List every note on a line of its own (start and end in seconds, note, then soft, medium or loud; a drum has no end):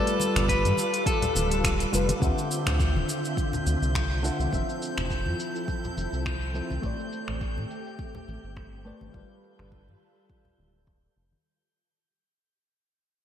0.00 1.89 G3 loud
0.00 2.19 G3 medium
0.00 1.89 F4 medium
0.00 2.19 F4 medium
0.00 0.49 A4 loud
0.00 1.90 A4 medium
0.00 2.20 A4 medium
0.00 1.91 B4 loud
0.00 2.20 B4 medium
0.00 2.23 D6 medium
0.07 closed hi-hat soft
0.07 shaker soft
0.20 muted conga medium
0.20 shaker medium
0.36 0.66 G1 loud
0.36 finger snap medium
0.36 closed hi-hat soft
0.36 low conga medium
0.36 shaker soft
0.49 1.06 B4 loud
0.49 kick loud
0.49 closed hi-hat medium
0.49 shaker soft
0.64 0.73 G2 loud
0.64 closed hi-hat soft
0.64 high conga medium
0.64 shaker soft
0.77 muted conga medium
0.77 shaker medium
0.94 closed hi-hat soft
0.94 shaker soft
1.06 1.89 A4 medium
1.06 kick loud
1.06 closed hi-hat medium
1.06 shaker soft
1.22 closed hi-hat soft
1.22 low conga medium
1.22 shaker soft
1.35 1.86 D1 loud
1.35 high conga medium
1.35 shaker medium
1.52 closed hi-hat soft
1.52 shaker soft
1.64 finger snap medium
1.64 kick loud
1.64 closed hi-hat medium
1.64 shaker soft
1.80 closed hi-hat soft
1.80 shaker soft
1.92 2.13 F1 loud
1.92 2.10 G3 medium
1.92 2.10 F4 medium
1.92 2.11 A4 medium
1.92 2.11 B4 medium
1.92 muted conga soft
1.92 shaker medium
2.09 closed hi-hat soft
2.09 muted conga medium
2.09 high conga medium
2.09 shaker soft
2.19 2.32 D2 loud
2.19 4.19 D3 medium
2.19 4.50 D3 medium
2.19 4.20 C4 medium
2.19 9.10 C4 medium
2.19 4.50 F4 loud
2.19 4.21 F4 medium
2.19 4.51 E5 medium
2.19 11.46 G6 medium
2.19 kick loud
2.19 shaker soft
2.24 4.22 E5 medium
2.38 shaker soft
2.51 shaker medium
2.66 2.97 D2 medium
2.66 finger snap medium
2.66 low conga medium
2.66 shaker soft
2.80 kick medium
2.80 shaker soft
2.96 3.04 D1 loud
2.96 high conga medium
3.09 shaker medium
3.25 shaker soft
3.37 kick loud
3.37 shaker soft
3.53 low conga medium
3.53 shaker soft
3.67 3.77 D2 loud
3.67 high conga medium
3.67 shaker medium
3.82 4.31 C2 medium
3.82 shaker soft
3.95 finger snap medium
3.95 kick medium
3.95 shaker soft
4.23 4.49 D3 medium
4.23 4.49 C4 medium
4.23 4.50 F4 medium
4.23 4.50 E5 loud
4.23 shaker medium
4.39 4.48 C2 medium
4.39 high conga medium
4.39 shaker soft
4.51 4.63 F1 loud
4.51 6.50 F3 medium
4.51 6.81 F3 medium
4.51 6.51 C4 medium
4.51 6.81 E4 medium
4.51 6.81 A4 medium
4.51 6.52 A4 medium
4.51 kick loud
4.51 shaker soft
4.55 6.53 E5 loud
4.69 shaker soft
4.82 shaker medium
4.98 5.27 F1 medium
4.98 finger snap medium
4.98 low conga medium
4.98 shaker soft
5.10 kick loud
5.10 shaker soft
5.26 5.35 F2 loud
5.26 high conga medium
5.40 shaker medium
5.56 shaker soft
5.68 kick loud
5.68 shaker soft
5.84 low conga medium
5.84 shaker soft
5.97 6.07 F1 medium
5.97 high conga medium
5.97 shaker medium
6.13 6.62 C2 medium
6.13 shaker soft
6.26 finger snap medium
6.26 kick loud
6.26 shaker soft
6.42 shaker soft
6.54 6.71 F3 medium
6.54 6.72 C4 medium
6.54 6.72 A4 medium
6.54 6.72 E5 medium
6.54 shaker medium
6.70 6.79 C2 medium
6.70 high conga medium
6.70 shaker soft
6.81 6.94 A1 medium
6.81 8.81 A3 medium
6.81 9.12 A3 medium
6.81 8.82 G4 medium
6.81 9.12 G4 medium
6.81 8.83 C5 medium
6.81 kick loud
6.81 shaker soft
6.86 8.83 D5 medium
7.00 shaker soft
7.13 shaker medium
7.28 7.59 A1 medium
7.28 finger snap medium
7.28 low conga medium
7.28 shaker soft
7.41 kick medium
7.41 shaker soft
7.57 7.66 A2 medium
7.57 high conga medium
7.71 shaker medium
7.87 shaker soft
7.99 kick loud
7.99 shaker soft
8.15 low conga medium
8.15 shaker soft
8.28 8.38 A1 medium
8.28 high conga medium
8.28 shaker medium
8.44 8.92 G1 medium
8.44 shaker soft
8.57 finger snap medium
8.57 kick loud
8.57 shaker soft
8.84 9.11 A3 medium
8.84 9.11 G4 medium
8.84 9.11 B4 medium
8.84 9.11 C5 medium
8.84 9.12 D5 loud
8.84 shaker medium
9.01 9.10 G1 medium
9.01 high conga loud
9.01 shaker soft
9.12 9.24 G1 medium
9.12 11.12 G3 medium
9.12 11.43 G3 medium
9.12 11.13 F4 medium
9.12 11.43 F4 medium
9.12 11.13 A4 medium
9.12 11.43 A4 medium
9.12 11.43 B4 medium
9.12 kick medium
9.12 shaker soft
9.16 11.14 B4 medium
9.31 shaker soft
9.44 shaker medium
9.59 9.89 G1 loud
9.59 finger snap medium
9.59 low conga medium
9.59 shaker soft
9.72 kick medium
9.88 9.96 G2 medium
9.88 high conga medium
10.02 shaker medium
10.30 kick loud
10.45 low conga medium
10.59 11.09 D1 medium
10.59 high conga medium
10.87 finger snap medium
10.87 kick medium
11.16 11.36 F1 medium
11.32 high conga medium